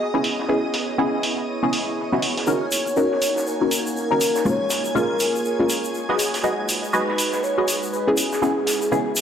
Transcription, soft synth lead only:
2.47 3.48 C#5 loud
3.46 3.95 A#4 loud
3.96 4.47 A#4 medium
4.46 4.95 C#5 loud
4.95 5.41 A#4 medium
5.45 6.15 A#4 medium
6.94 7.45 B4 loud
7.43 7.92 C#5 loud
7.93 8.16 B4 loud
8.18 9.21 G#4 loud

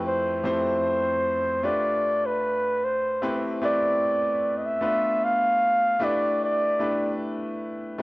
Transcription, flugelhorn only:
0.08 0.43 C5 medium
0.46 1.66 C5 loud
1.65 2.28 D5 loud
2.27 2.86 B4 medium
2.84 3.37 C5 medium
3.65 4.59 D5 loud
4.57 4.67 D#5 medium
4.66 5.26 E5 loud
5.24 6.06 F5 loud
6.04 6.42 D5 loud
6.45 7.18 D5 loud

